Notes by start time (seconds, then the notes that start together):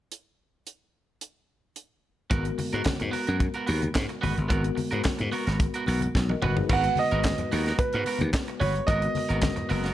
0.12 closed hi-hat
0.67 closed hi-hat
1.21 closed hi-hat
1.76 closed hi-hat
2.30 G#1 G#3 B3 F#4 A#4, kick, closed hi-hat, low conga
2.45 muted clean electric guitar stroke, closed hi-hat
2.58 muted clean electric guitar stroke, open hi-hat, high conga
2.73 G#2 B3 F#4 A#4, closed hi-hat
2.84 muted slap bass stroke, muted clean electric guitar stroke, kick, snare, clap, closed hi-hat, muted conga, high conga
3.00 G#2, muted clean electric guitar stroke, closed hi-hat, low conga
3.11 B3 F#4 A#4, open hi-hat, muted conga
3.27 F#2 B3 F#4 A#4, closed hi-hat
3.40 muted clean electric guitar stroke, kick, closed hi-hat, muted conga
3.54 B3 F#4 A#4, closed hi-hat
3.67 D#2 B3 F#4 A#4, open hi-hat
3.82 muted clean electric guitar stroke, closed hi-hat, high conga
3.94 G#2, muted clean electric guitar stroke, kick, snare, clap, closed hi-hat, muted conga
4.09 muted clean electric guitar stroke, closed hi-hat
4.21 G#1 B3 F#4 B4, open hi-hat, muted conga, high conga, low conga
4.36 G1, muted clean electric guitar stroke, closed hi-hat
4.49 G#1 G#3 B3 F#4 A#4, kick, closed hi-hat, muted conga, low conga
4.53 A#4
4.63 muted clean electric guitar stroke, closed hi-hat
4.76 muted clean electric guitar stroke, open hi-hat, muted conga, high conga
4.91 G#2 B3 F#4 A#4, closed hi-hat
5.04 muted clean electric guitar stroke, muted slap bass stroke, kick, snare, clap, closed hi-hat, high conga
5.19 G#2, muted clean electric guitar stroke, closed hi-hat, low conga
5.32 B3 F#4 A#4, open hi-hat, muted conga
5.46 G#1 B3 F#4 A#4, snare, closed hi-hat
5.60 muted clean electric guitar stroke, kick, closed hi-hat, muted conga
5.74 B3 F#4 A#4, closed hi-hat
5.86 B1 B3 F#4 A#4, open hi-hat, muted conga
6.00 muted clean electric guitar stroke, closed hi-hat, high conga
6.15 B1, muted clean electric guitar stroke, kick, snare, muted conga
6.29 A#4 D#5, muted clean electric guitar stroke, high tom
6.42 G1 B3 F#4 B4, mid tom, muted conga, high conga, low conga
6.57 D#4 G#4, muted clean electric guitar stroke, floor tom
6.67 G#1 G#3 B3 F#4 B4, kick, crash, muted conga, low conga
6.72 A#4 F#5
6.84 muted clean electric guitar stroke, closed hi-hat
6.96 D#5, muted clean electric guitar stroke, open hi-hat, muted conga, high conga
7.11 G#1 B3 F#4 A#4, closed hi-hat
7.23 muted clean electric guitar stroke, kick, snare, clap, closed hi-hat, high conga
7.38 muted clean electric guitar stroke, closed hi-hat, low conga
7.51 D#2 B3 F#4 A#4, open hi-hat, muted conga
7.66 B3 F#4 A#4, snare, closed hi-hat
7.78 B4, muted slap bass stroke, muted clean electric guitar stroke, kick, closed hi-hat, muted conga
7.93 G#2 B3 F#4 A#4, closed hi-hat
8.04 B3 F#4 A#4, open hi-hat, muted conga
8.19 D#2, muted clean electric guitar stroke, closed hi-hat, high conga
8.33 muted clean electric guitar stroke, kick, snare, clap, closed hi-hat, muted conga
8.48 muted clean electric guitar stroke, closed hi-hat
8.60 G1 B3 F#4 B4 C#5, open hi-hat, muted conga, high conga, low conga
8.75 muted clean electric guitar stroke, closed hi-hat
8.87 G#1 G#3 B3 F#4 A#4 D#5, kick, closed hi-hat, low conga
9.02 muted clean electric guitar stroke, closed hi-hat
9.15 muted clean electric guitar stroke, open hi-hat, muted conga, high conga
9.29 G#1 B3 F#4 A#4, closed hi-hat
9.41 muted clean electric guitar stroke, kick, snare, clap, closed hi-hat, muted conga, high conga
9.56 muted clean electric guitar stroke, closed hi-hat, low conga
9.69 F#1 B3 F#4 A#4, open hi-hat, muted conga
9.83 B3 F#4 A#4, snare, closed hi-hat